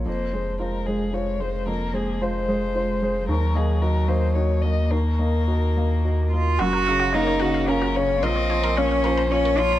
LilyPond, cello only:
\new Staff \with { instrumentName = "Cello" } { \time 3/4 \key f \phrygian \tempo 4 = 111 bes8 aes4. aes4 | bes4 aes2 | ges2. | bes2~ bes8 f'8 |
ges'4 ees'4 des'4 | c'4 des'4 des'8 f'8 | }